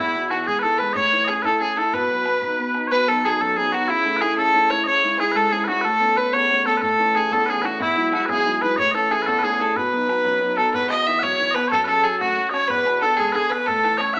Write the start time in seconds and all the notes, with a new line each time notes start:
Already playing: E4
0.00 E2
0.06 bodhran
0.15 B2
0.30 E3 F#4, bodhran
0.45 G#3 G#4, bodhran
0.59 A4 B4
0.64 E3
0.78 G#3 B4, bodhran
0.93 A2 C#5 D#5, bodhran
1.13 E3
1.25 G#4 D#5, bodhran
1.30 C#4
1.42 E4 A4 B4, bodhran
1.60 C#4 G#4
1.77 E4 A4, bodhran
1.93 B2 B4, bodhran
2.02 bodhran
2.11 F#3
2.26 B3, bodhran
2.42 D#4, bodhran
2.59 B3
2.75 D#4, bodhran
2.87 B2 B4 C#5
3.07 F#3 B3 D#4 A4
3.19 A4
3.24 F#3 B3 D#4 G#4
3.41 F#2 A4
3.56 F#3 B3 D#4 G#4
3.72 F#3 B3 D#4 F#4
3.88 C#3 E4
4.05 A3 C#4 E4
4.17 B4
4.21 A3 C#4 E4 G#4
4.38 C#3 A4
4.53 A3 C#4 E4
4.70 A3 C#4 E4 C#5
4.84 C#3 C#5 D#5
5.03 G#3 C#4 E4
5.18 G#3 C#4 E4 G#4
5.32 G#2 B4
5.36 A4
5.51 G#3 C#4 E4 G#4
5.64 G#3 F#4 B4
5.69 C#4 E4 F#4
5.81 A2 A4 B4
5.99 A3 B3 C#4
6.17 A3 B3 C#4 B4
6.33 E2 C#5
6.50 A3 B3 C#4
6.66 A3 B3 C#4 A4
6.77 B4
6.82 A2 A4, bodhran
6.91 bodhran
6.99 E3 A3 C#4
7.15 E3 A3 C#4 G#4, bodhran
7.31 E2 A4, bodhran
7.46 E3 A3 C#4 G#4 B4
7.62 E3 A3 C#4 F#4 B4, bodhran
7.80 E2 E4, bodhran
7.89 bodhran
7.95 F#3 G#3 E4
8.12 F#3 G#3 E4 F#4, bodhran
8.26 B1 G#4 B4, bodhran
8.45 F#3 G#3 E4
8.61 F#3 G#3 E4 B4, bodhran
8.76 A2 C#5 D#5, bodhran
8.86 bodhran
8.91 E3 A3 C#4 A4 D#5
8.96 A4
9.10 E3 A3 C#4 G#4, bodhran
9.22 B4
9.26 E2 A4, bodhran
9.39 E3 B4
9.43 A3 C#4 G#4
9.59 E3 A3 C#4 A4, bodhran
9.76 B2 B4, bodhran
9.92 F#3 B3 D#4
10.08 F#3 B3 D#4, bodhran
10.25 F#2, bodhran
10.41 F#3 B3 D#4
10.57 F#3 B3 D#4 A4, bodhran
10.74 E2 B4, bodhran
10.82 bodhran
10.90 B2 D#5, bodhran
11.07 E3 E5
11.19 F#3 C#5 F#5, bodhran
11.31 bodhran
11.40 E3, bodhran
11.51 B4 D#5
11.55 B3 B4, bodhran
11.68 A4 C#5
11.72 F#2, bodhran
11.80 bodhran
11.85 C#3 A4 B4, bodhran
12.04 F#3 G#4
12.20 A3 F#4, bodhran
12.29 bodhran
12.37 F#3, bodhran
12.50 C#4 C#5 D#5, bodhran
12.54 C#5
12.68 E2 B4, bodhran
12.78 bodhran
12.85 B2, bodhran
13.01 D3 A4
13.17 G#3 G#4, bodhran
13.28 bodhran
13.32 D3 G#4 B4, bodhran
13.50 B3 B4, bodhran
13.66 A2 A4, bodhran
13.76 bodhran
13.84 E3, bodhran
13.98 C#4 C#5 D#5, bodhran
14.14 E5 F#5, bodhran